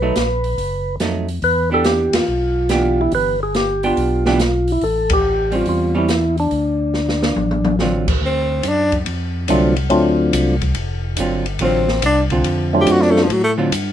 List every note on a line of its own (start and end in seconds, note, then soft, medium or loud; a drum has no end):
0.00 0.12 B1 medium
0.00 0.14 F#3 medium
0.00 0.14 A3 medium
0.00 0.14 D#4 medium
0.00 0.96 B4 medium
0.16 0.55 A#1 medium
0.16 snare medium
0.16 closed hi-hat medium
0.44 open hi-hat soft
0.58 0.97 F#1 medium
0.58 kick soft
0.58 open hi-hat soft
1.00 1.39 F2 medium
1.00 1.26 F#3 medium
1.00 1.26 A3 medium
1.00 1.27 D#4 medium
1.00 snare medium
1.00 closed hi-hat soft
1.29 open hi-hat soft
1.42 2.09 E2 medium
1.42 1.70 B4 loud
1.42 kick soft
1.42 open hi-hat soft
1.71 2.25 E3 medium
1.71 2.25 B3 medium
1.71 2.25 D4 medium
1.71 2.26 G4 medium
1.71 1.85 A4 medium
1.84 2.15 G4 medium
1.84 snare medium
1.84 closed hi-hat medium
2.13 2.20 E2 soft
2.13 3.01 F4 loud
2.13 snare medium
2.13 ride medium
2.28 3.09 B1 medium
2.69 3.35 E3 medium
2.69 3.35 B3 medium
2.69 3.35 D4 medium
2.69 3.36 G4 medium
2.69 snare medium
2.69 closed hi-hat medium
3.01 3.13 E4 medium
3.12 3.93 G1 medium
3.12 3.40 B4 loud
3.12 kick soft
3.12 open hi-hat soft
3.43 3.55 G#4 medium
3.55 3.85 G4 medium
3.55 snare medium
3.55 closed hi-hat soft
3.83 4.23 B3 medium
3.83 4.23 D4 medium
3.83 4.72 F4 medium
3.83 4.23 G4 medium
3.83 open hi-hat soft
3.97 4.78 B1 medium
3.97 kick soft
3.97 open hi-hat soft
4.26 4.38 E3 medium
4.26 4.39 B3 medium
4.26 4.39 D4 medium
4.26 4.39 G4 medium
4.26 snare medium
4.39 snare medium
4.39 closed hi-hat soft
4.68 open hi-hat soft
4.72 4.84 E4 medium
4.81 5.63 A1 medium
4.81 5.12 A4 medium
4.81 kick soft
4.81 open hi-hat soft
5.10 5.56 G4 loud
5.10 kick medium
5.10 ride medium
5.51 5.92 G3 medium
5.51 5.92 C4 medium
5.51 5.93 C#4 medium
5.51 open hi-hat soft
5.56 5.67 F4 medium
5.66 6.47 E2 medium
5.66 5.95 F4 medium
5.66 kick soft
5.66 open hi-hat soft
5.95 6.07 G3 medium
5.95 6.08 C4 medium
5.95 6.08 C#4 medium
5.95 6.36 E4 medium
6.09 snare medium
6.09 closed hi-hat soft
6.38 7.76 D4 medium
6.38 open hi-hat soft
6.51 7.33 D2 medium
6.51 kick soft
6.51 open hi-hat soft
6.94 snare soft
7.09 snare soft
7.23 snare medium
7.36 8.17 A1 medium
7.36 mid tom medium
7.51 mid tom medium
7.65 mid tom medium
7.79 8.06 D3 medium
7.79 8.06 F#3 medium
7.79 8.06 C4 medium
7.79 8.06 F4 medium
7.79 snare soft
8.08 kick medium
8.08 crash medium
8.21 8.62 D2 medium
8.21 kick soft
8.26 8.69 C4 medium
8.63 9.05 F#2 medium
8.63 kick soft
8.63 hi-hat pedal medium
8.63 ride medium
8.68 8.95 D4 medium
8.92 kick medium
8.92 ride soft
9.06 9.48 F2 medium
9.06 kick soft
9.06 ride medium
9.48 9.90 C2 medium
9.48 9.75 D3 medium
9.48 9.75 F#3 medium
9.48 9.75 A3 soft
9.48 9.75 C4 soft
9.48 9.75 C4 medium
9.48 9.75 D4 soft
9.48 9.75 F4 medium
9.48 kick soft
9.48 hi-hat pedal soft
9.48 ride medium
9.76 ride soft
9.90 10.32 D2 medium
9.90 10.56 F#3 medium
9.90 10.56 A3 medium
9.90 10.56 C4 medium
9.90 10.56 D4 medium
9.90 10.56 F4 medium
9.90 kick soft
9.90 ride medium
10.33 10.74 C2 loud
10.33 kick soft
10.33 hi-hat pedal medium
10.33 ride medium
10.62 kick medium
10.62 ride soft
10.75 11.16 F1 medium
10.75 kick soft
10.75 ride medium
11.17 11.59 G1 loud
11.17 11.44 D3 medium
11.17 11.45 F#3 medium
11.17 11.45 C4 medium
11.17 11.45 F4 medium
11.17 kick soft
11.17 hi-hat pedal medium
11.17 ride medium
11.46 ride soft
11.59 12.01 A1 medium
11.59 11.86 D3 medium
11.59 11.86 F#3 medium
11.59 11.87 C4 medium
11.59 11.87 F4 medium
11.59 kick soft
11.59 ride medium
11.64 12.02 C4 medium
11.88 snare soft
12.02 12.44 C2 medium
12.02 12.22 D4 medium
12.02 kick soft
12.02 hi-hat pedal medium
12.02 ride medium
12.30 12.85 D3 medium
12.30 12.85 C4 medium
12.30 12.85 F4 medium
12.30 kick soft
12.30 ride soft
12.44 12.86 F2 medium
12.44 kick soft
12.44 ride medium
12.73 13.27 F#3 medium
12.73 13.27 A3 medium
12.73 13.27 C4 medium
12.73 13.28 D4 medium
12.73 13.27 F4 medium
12.81 12.93 G4 medium
12.87 13.28 F#2 medium
12.87 kick soft
12.87 hi-hat pedal medium
12.87 ride medium
12.92 13.03 F#4 medium
13.02 13.12 D4 medium
13.02 snare soft
13.11 13.25 A3 medium
13.16 snare soft
13.23 13.34 F3 medium
13.29 13.71 A2 medium
13.29 13.43 F#3 medium
13.29 kick soft
13.29 ride medium
13.44 13.52 A3 medium
13.58 13.70 D3 medium
13.58 13.70 F#3 medium
13.58 13.71 C4 medium
13.58 13.71 F4 medium
13.72 13.93 G2 medium
13.72 kick soft
13.72 hi-hat pedal medium
13.72 ride medium